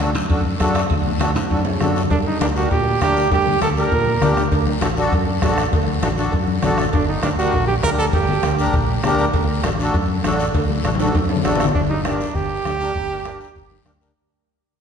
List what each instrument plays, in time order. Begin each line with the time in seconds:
Already playing: fingered electric bass D2
0.00 accordion D4 F#4 A4, bombo rim, high conga, short guiro
0.15 fingered electric bass F#2, high timbale, short guiro
0.30 fingered electric bass F#2, accordion D4 F#4 A4, bombo low, high conga, high timbale, long guiro
0.45 high conga
0.59 fingered electric bass F#2, accordion D4 F#4 A4, bombo low, bombo rim, high conga, high timbale, low timbale, short guiro
0.75 bombo rim, high timbale, short guiro
0.90 fingered electric bass D2, bombo low, high conga, high timbale, long guiro
1.06 high conga, low conga
1.20 accordion D4 F#4 A4, bombo rim, high conga, high timbale, short guiro
1.35 fingered electric bass F#2, high timbale, short guiro
1.50 fingered electric bass F#2, accordion D4 F#4 A4, bombo low, high conga, high timbale, long guiro
1.65 high conga, low timbale
1.80 fingered electric bass F#2, accordion D4 F#4 A4, bombo rim, high conga, low conga, low timbale, short guiro
1.96 low timbale, short guiro
2.10 fingered electric bass G2, trumpet D4, bombo low, cowbell, high conga, long guiro
2.26 trumpet D#4
2.40 fingered electric bass D2, trumpet D4, accordion D4 G4 A#4, bombo rim, cowbell, high conga, short guiro
2.55 accordion D4 G4 A#4, trumpet F#4, short guiro
2.71 fingered electric bass A#2, trumpet G4, bombo low, cowbell, high conga, long guiro
3.01 fingered electric bass D2, accordion D4 G4 A#4, trumpet G4, bombo low, bombo rim, cowbell, high conga, low timbale, short guiro
3.17 short guiro
3.31 fingered electric bass G2, trumpet G4, bombo low, cowbell, high conga, long guiro
3.47 high conga, low conga
3.61 fingered electric bass D2, accordion D4 G4 A#4, trumpet A4, bombo rim, cowbell, high conga, short guiro
3.77 accordion D4 G4 A#4, trumpet A#4, short guiro
3.92 fingered electric bass A#2, bombo low, cowbell, high conga, long guiro
4.07 high conga
4.21 fingered electric bass D2, accordion D4 G4 A#4, bombo rim, cowbell, high conga, low conga, short guiro
4.37 bombo rim, short guiro
4.52 fingered electric bass D2, bombo low, cowbell, high conga, long guiro
4.67 high conga
4.81 fingered electric bass A1, accordion D4 F#4 A4, bombo rim, cowbell, high conga, short guiro
4.97 accordion D4 F#4 A4, short guiro
5.12 fingered electric bass F#2, bombo low, cowbell, high conga, long guiro
5.27 high conga
5.42 fingered electric bass A1, accordion D4 F#4 A4, bombo low, bombo rim, cowbell, high conga, low timbale, short guiro
5.58 bombo rim, short guiro
5.73 fingered electric bass D2, bombo low, cowbell, high conga, long guiro
5.88 high conga
6.02 fingered electric bass A1, accordion D4 F#4 A4, bombo rim, cowbell, high conga, short guiro
6.17 accordion D4 F#4 A4, short guiro
6.32 fingered electric bass F#2, bombo low, cowbell, high conga, long guiro
6.47 high conga
6.62 fingered electric bass A1, accordion D4 F#4 A4, bombo rim, cowbell, high conga, low conga, low timbale, short guiro
6.78 bombo rim, short guiro
6.93 fingered electric bass G1, trumpet D4, bombo low, cowbell, high conga, long guiro
7.08 trumpet D#4
7.23 fingered electric bass D2, accordion D4 G4 A#4, trumpet D4, bombo rim, cowbell, high conga, short guiro
7.38 accordion D4 G4 A#4, trumpet F#4, short guiro
7.53 fingered electric bass A#1, bombo low, cowbell, high conga, long guiro
7.68 trumpet G4, high conga
7.83 fingered electric bass D2, accordion D4 G4 A#4, trumpet A#4, bombo low, bombo rim, cowbell, high conga, low timbale, short guiro
7.98 trumpet A4, short guiro
8.13 fingered electric bass G1, trumpet G4, bombo low, cowbell, high conga, long guiro
8.28 low conga
8.43 fingered electric bass D2, accordion D4 G4 A#4, bombo rim, cowbell, high conga, short guiro
8.59 accordion D4 G4 A#4, short guiro
8.73 fingered electric bass A#1, bombo low, cowbell, high conga, long guiro
8.88 high conga
9.03 fingered electric bass D2, accordion D4 G4 A#4, bombo rim, cowbell, high conga, low conga, low timbale, short guiro
9.19 short guiro
9.34 fingered electric bass D2, bombo low, cowbell, high conga, long guiro
9.64 fingered electric bass A1, accordion D4 F#4 A4, bombo rim, cowbell, high conga, short guiro
9.79 accordion D4 F#4 A4, short guiro
9.94 fingered electric bass F#2, bombo low, cowbell, high conga, long guiro
10.24 fingered electric bass A1, accordion D4 F#4 A4, bombo rim, cowbell, high conga, low timbale, short guiro
10.40 short guiro
10.54 fingered electric bass D2, bombo low, cowbell, high conga, long guiro
10.70 high conga
10.84 fingered electric bass A1, accordion D4 F#4 A4, bombo rim, cowbell, high conga, short guiro
10.95 high conga
10.99 accordion D4 F#4 A4, high timbale, short guiro
11.05 high conga
11.15 fingered electric bass F#2, bombo low, cowbell, high timbale, long guiro
11.29 low timbale
11.36 low conga
11.44 fingered electric bass A1, accordion D4 F#4 A4, bombo rim, cowbell, low timbale, short guiro
11.55 low conga
11.60 bombo rim, low timbale, short guiro
11.65 low conga
11.74 fingered electric bass G1, trumpet D4, bombo low, high conga, long guiro
11.89 accordion D4 G4 A#4, trumpet D#4, high conga
12.04 trumpet D4, accordion D4 G4 A#4, bombo rim, high conga, short guiro
12.21 short guiro
12.35 fingered electric bass G1, trumpet G4, bombo low, high conga, long guiro
12.65 fingered electric bass D2, accordion D4 G4 A4, bombo rim, high conga, short guiro
12.81 accordion D4 G4 A#4, short guiro
12.95 fingered electric bass G1, bombo low, high conga, long guiro
13.10 accordion D4 G4 A#4
13.25 accordion D4 G4 A#4, bombo rim, high conga, short guiro
13.41 short guiro
13.56 fingered electric bass G1, bombo low, high conga, long guiro
13.71 high conga
13.86 fingered electric bass D2, accordion D4 G4 A#4, bombo rim, high conga, short guiro
14.00 accordion D4 G4 A#4, short guiro